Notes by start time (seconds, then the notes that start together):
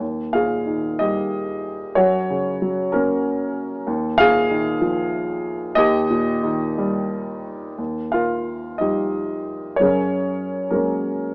0.00 D#2
0.33 A#2 G#4 F5
0.66 D#3
0.99 G3 G4 D#5
1.95 F#2 F#4 C#5
2.30 C#3
2.62 F#3
2.92 A#3 C#4 A#4
3.87 D#2
4.18 A#2 G#4 F5
4.50 D#3
4.81 F3
5.75 D#2 G4 D#5
6.10 A#2
6.43 D#3
6.78 G3
7.78 D#2
8.12 F4 A#4 F5
8.78 F3 G3 D#4 G4 D#5
9.76 F#2 C#5
9.81 C#4 G#4 A#4
10.70 F#3 G#3 A#3 C#4 A#4